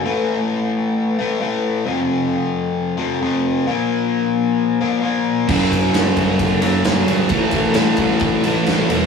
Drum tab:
CC |--------|--------|--------|x-------|
RD |--------|--------|--------|-xxxxxxx|
SD |--------|--------|--------|--o---o-|
BD |--------|--------|--------|oo-oo---|

CC |--------|
RD |xxxxxxxx|
SD |--o---o-|
BD |oo-oo---|